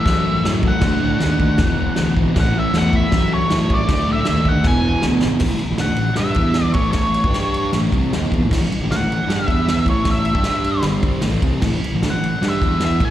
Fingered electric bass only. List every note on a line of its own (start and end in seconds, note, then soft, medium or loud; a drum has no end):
0.06 0.34 F#2 loud
0.44 0.73 F#2 medium
0.82 0.96 D2 medium
1.02 1.16 A2 medium
1.21 1.50 D#2 medium
1.59 1.87 E1 loud
1.99 2.13 D2 medium
2.17 2.31 G#1 loud
2.36 2.64 A1 loud
2.74 3.02 E2 medium
3.12 3.40 F#2 loud
3.52 3.80 F#2 medium
3.89 4.03 D2 loud
4.09 4.23 A2 medium
4.28 4.56 D#2 medium
4.65 4.93 E1 loud
5.05 5.19 D2 medium
5.24 5.38 G#1 medium
5.41 5.51 A1 medium
5.52 muted fingered electric bass stroke soft
5.71 5.80 A1 medium
5.80 5.90 D2 medium
5.90 6.08 A1 medium
6.19 6.36 G2 loud
6.36 6.73 E2 medium
6.75 7.21 A1 loud
7.24 7.70 G2 medium
7.73 7.92 A1 loud
7.93 8.11 C2 loud
8.13 8.30 D#2 medium
8.31 8.41 E2 loud
8.43 8.50 A1 medium
8.51 8.61 A1 medium
8.61 muted fingered electric bass stroke soft
8.80 8.89 A1 medium
8.89 8.99 D2 medium
8.99 9.18 A1 medium
9.27 9.47 G2 loud
9.48 9.85 E2 loud
9.86 10.33 A1 medium
10.34 10.81 G2 medium
10.84 11.02 G1 loud
11.03 11.22 C2 medium
11.24 11.42 A1 medium
11.42 11.61 C2 loud
11.62 11.72 A1 medium
11.74 muted fingered electric bass stroke soft
11.93 12.02 A1 medium
12.03 12.12 D2 medium
12.13 12.31 A1 medium
12.42 12.60 G2 loud
12.62 12.98 E2 loud
13.00 13.10 A1 medium